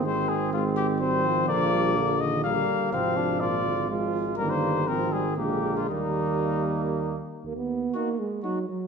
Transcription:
<<
  \new Staff \with { instrumentName = "Trumpet" } { \time 3/4 \key ees \major \tempo 4 = 122 c''8 aes'8 f'8 g'8 c''4 | d''4. ees''8 f''4 | f''4 d''4 r4 | bes'16 c''8. bes'8 aes'8 g'8. f'16 |
ees'2~ ees'8 r8 | \key ees \minor r4 ges'4 ges'4 | }
  \new Staff \with { instrumentName = "Flugelhorn" } { \time 3/4 \key ees \major c'4 c'4 c'4 | bes4. r8 bes4 | c'8 d'8 f'4 f'4 | bes4 c'4 bes4 |
bes2~ bes8 r8 | \key ees \minor r4 ges'4 ges'4 | }
  \new Staff \with { instrumentName = "French horn" } { \clef bass \time 3/4 \key ees \major aes4 aes4 g8 f8~ | f4 d4 g4 | f4. r8 aes4 | g4 f8 g8 aes4 |
g2~ g8 r8 | \key ees \minor r4 ees'4 ees'4 | }
  \new Staff \with { instrumentName = "Trombone" } { \clef bass \time 3/4 \key ees \major ees2. | d8 g8 f8 ees8 d4 | c4 bes,8 d8 f4 | ees4 ees4 d4 |
ees2~ ees8 r8 | \key ees \minor bes16 ces'8. bes8 aes8 ges8 ges8 | }
  \new Staff \with { instrumentName = "Tuba" } { \clef bass \time 3/4 \key ees \major aes,,2. | bes,,2~ bes,,8 r8 | aes,,2. | g,,4 aes,,4 bes,,4 |
ees,2~ ees,8 r8 | \key ees \minor ees,4 r2 | }
>>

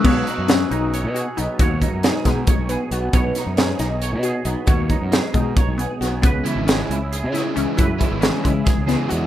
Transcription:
<<
  \new Staff \with { instrumentName = "Clean electric guitar" } { \time 7/8 \key b \major \tempo 4 = 136 << { cis''8 dis'8 gis'8 dis'8 cis''8 gis'4 | cis''8 dis'8 gis'8 dis'8 cis''8 gis'4 | cis''8 dis'8 gis'8 dis'8 cis''8 gis'4 | cis''8 dis'8 gis'8 dis'8 cis''8 gis'4 |
b'8 e'8 gis'8 e'8 gis'8 gis'4 | b'8 e'8 gis'8 e'8 gis'8 gis'4 | } \\ { b,2. b8 | b,2. b8 | b,2. b8 | b,2. b8 |
cis2. e8 | cis2. e8 | } >> }
  \new Staff \with { instrumentName = "Synth pluck" } { \time 7/8 \key b \major b4 cis'8 dis'4 fis'8 dis'8 | fis'4 dis'8 gis4 b8 fis'8 | b4 cis'8 dis'4 fis'8 dis'8 | fis'4 dis'8 gis4 b8 fis'8 |
b4 cis'8 r4 e'8 cis'8 | e'4 cis'8 gis4 b8 fis'8 | }
  \new Staff \with { instrumentName = "Overdriven electric guitar" } { \clef bass \time 7/8 \key b \major r2. r8 | r2. r8 | r2. r8 | r2. r8 |
r8 <cis e gis cis'>8 <cis e gis cis'>8 r4 <cis e gis cis'>8 <cis e gis cis'>8 | r8 <cis e gis cis'>8 <cis e gis cis'>8 r4 <cis e gis cis'>8 <cis e gis cis'>8 | }
  \new Staff \with { instrumentName = "Fingered electric bass" } { \clef bass \time 7/8 \key b \major b,,8 r16 fis,8. b,,8. b,8 r16 b,,16 r16 | dis,8. fis,8 r16 b,8 r16 b,,8 r16 b,,8 | b,,8 r16 fis,8. b,,8. b,8 r16 b,,16 r16 | dis,8. fis,8 r16 b,8 r16 b,,8 r16 b,,8 |
cis,8 r16 gis,,8. cis,8. cis8 r16 cis,16 r16 | fis,8. gis,,8 r16 cis8 r16 cis,8 r16 e,8 | }
  \new DrumStaff \with { instrumentName = "Drums" } \drummode { \time 7/8 <cymc bd>8 hh8 <hh sn>8 hh8 hh8 hh8 hh8 | <hh bd>8 <hh bd>8 <hh sn>8 <hh bd sn>8 <hh bd>8 hh8 hh8 | <hh bd>8 <hh sn>8 <hh sn>8 <hh sn>8 hh8 hh8 hh8 | <hh bd>8 <hh bd>8 <hh sn>8 <hh bd>8 <hh bd>8 hh8 <hh sn>8 |
<hh bd>8 hh8 <hh sn>8 hh8 hh8 <hh sn>8 hh8 | <hh bd>8 <hh bd>8 <hh sn>8 <hh bd>8 <hh bd sn>8 <hh sn>8 hh8 | }
>>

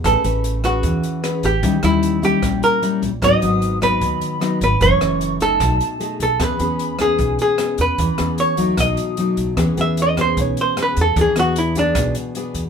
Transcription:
<<
  \new Staff \with { instrumentName = "Flute section" } { \time 4/4 \key e \major \tempo 4 = 151 r1 | r2 r8 ais''4 r8 | dis'''4. b''2 b''8 | cis'''4. a''2 a''8 |
b''4. gis''4 gis''4 b''8~ | b''4 cis'''4 dis'''4. r8 | r1 | r1 | }
  \new Staff \with { instrumentName = "Hollow-body jazz guitar" } { \time 4/4 \key e \major a'4. fis'2 g'8~ | g'8 e'4 g'4 ais'4 r8 | dis''4. b'2 b'8 | cis''4. a'2 a'8 |
b'4. gis'4 gis'4 b'8~ | b'4 cis''4 dis''4. r8 | r8 e''8 dis''8 c''8 cis''8 c''8 b'8 a'8 | gis'8 fis'8 e'8 d'4 r4. | }
  \new Staff \with { instrumentName = "Nylon-string guitar" } { \time 4/4 \key e \major << { <cis' gis' b'>8 <cis' b'>4 <cis' gis' b'>4. <cis' gis' b'>8 r8 | <g cis' e'>8 <g cis' e'>4 <g cis' e'>4. <g cis' e'>8 r8 | <fis b dis'>8 <fis b dis'>4 <fis b dis'>4. <fis b dis'>8 r8 | <e a cis'>8 <e a cis'>4 <a dis'>4. <a dis' gis'>8 r8 |
<b cis' gis'>8 <b cis' gis'>4 <b cis' gis'>4. <b cis' gis'>4~ | <b cis' gis'>8 <b cis' gis'>4 <fis a dis'>4. <fis a dis'>4 | <b cis' gis'>8 <b cis' gis'>4 <b cis' gis'>4. <b cis' gis'>8 r8 | <b d' gis'>8 <b d' gis'>4 <b d' gis'>4. <b d' gis'>8 r8 | } \\ { a2 e2 | dis2 ais,2 | gis,2 dis2 | fis,2 b,2 |
e2 b,2 | e2 b,2 | e2 b,2 | e2 b,2 | } >> }
  \new Staff \with { instrumentName = "Upright bass" } { \clef bass \time 4/4 \key e \major a,,16 r16 a,,4. e,8 r4 a,,8 | dis,16 r16 dis,4. ais,,8 r4 ais,,8 | gis,,16 r16 gis,,4. dis,8 r4 gis,,8 | fis,,16 r16 fis,,4. b,,8 r4 b,,8 |
e,16 r16 e,4. b,,8 r4 e,8 | e,16 r16 e,4. b,,8 r4 b,,8 | e,16 r16 e,4. b,,8 r4 e,8 | e,16 r16 e,4. b,,8 r4 e,8 | }
  \new DrumStaff \with { instrumentName = "Drums" } \drummode { \time 4/4 <hh bd ss>8 hh8 hh8 <hh bd ss>8 <hh bd>8 hh8 <hh ss>8 <hh bd>8 | <hh bd>8 <hh ss>8 hh8 <hh bd>8 <hh bd ss>8 hh8 hh8 <hh bd>8 | <hh bd ss>8 hh8 hh8 <hh bd ss>8 <hh bd>8 hh8 <hh ss>8 <hh bd>8 | <hh bd>8 <hh ss>8 hh8 <hh bd>8 <hh bd ss>8 hh8 hh8 <hh bd>8 |
<hh bd ss>8 hh8 hh8 <hh bd ss>8 <hh bd>8 hh8 <hh ss>8 <hh bd>8 | <hh bd>8 <hh ss>8 hh8 <hh bd>8 <hh bd ss>8 hh8 hh8 <hh bd>8 | <hh bd ss>8 hh8 hh8 <hh bd ss>8 <hh bd>8 hh8 <hh ss>8 <hh bd>8 | <hh bd>8 <hh ss>8 hh8 <hh bd>8 <hh bd ss>8 hh8 hh8 <hh bd>8 | }
>>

